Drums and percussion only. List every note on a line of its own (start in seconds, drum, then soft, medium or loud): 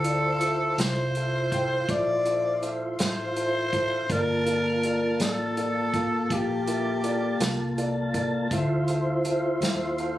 0.04 closed hi-hat medium
0.41 closed hi-hat medium
0.78 snare medium
0.78 closed hi-hat medium
1.15 closed hi-hat medium
1.52 kick medium
1.52 closed hi-hat medium
1.88 kick medium
1.88 closed hi-hat medium
2.25 closed hi-hat medium
2.63 closed hi-hat soft
2.99 snare medium
2.99 closed hi-hat medium
3.36 closed hi-hat medium
3.73 kick medium
3.73 closed hi-hat soft
4.09 kick medium
4.09 closed hi-hat medium
4.46 closed hi-hat soft
4.83 closed hi-hat medium
5.20 snare medium
5.20 closed hi-hat medium
5.57 closed hi-hat medium
5.94 kick medium
5.94 closed hi-hat medium
6.30 kick medium
6.30 closed hi-hat medium
6.67 closed hi-hat medium
7.04 closed hi-hat soft
7.40 snare medium
7.40 closed hi-hat medium
7.78 closed hi-hat medium
8.14 kick medium
8.14 closed hi-hat medium
8.51 kick medium
8.51 closed hi-hat medium
8.88 closed hi-hat medium
9.25 closed hi-hat soft
9.62 snare medium
9.62 closed hi-hat medium
9.98 closed hi-hat soft